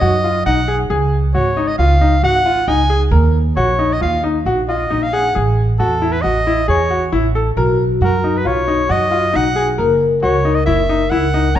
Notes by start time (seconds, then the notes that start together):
0.00 F#2 F#4 D#5
0.24 F4
0.46 B1 D#4 F#5
0.68 G#4
0.90 C#2 G#4
1.35 G#1 F#4 C#5
1.57 D#4
1.68 D#5
1.78 C#2 F4 F5
2.01 D#4
2.23 G#1 F#4 F#5
2.46 F4
2.68 C#2 D#4 G#5
2.90 G#4
3.11 D#2 A#4
3.56 A#1 F#4 C#5
3.79 D#4
3.93 D#5
4.01 D#2 F4 F5
4.24 D#4
4.46 A#1 F#4
4.68 F4 D#5
4.90 A#1 D#4
5.03 F5
5.13 G#4 F#5
5.35 A1 G#4
5.79 E2 F#4 A4
6.02 E4
6.12 B4
6.21 A1 F#4 D#5
6.47 E4
6.68 E2 G#4 C#5
6.90 F#4
7.12 A1 E4
7.35 A4
7.57 B1 F#4 A#4
8.01 F#2 F#4 A#4
8.24 D#4
8.37 B4
8.45 B1 F4 C#5
8.68 D#4
8.89 F#2 F#4 D#5
9.11 F4
9.33 B1 D#4 F#5
9.56 G#4
9.78 F#1 A#4
10.22 C#2 F#4 C#5
10.45 D#4
10.55 D#5
10.65 F#1 E4 E5
10.89 D#4
11.10 C#2 E4 F#5
11.34 D#4
11.55 F#1 C#4 A#5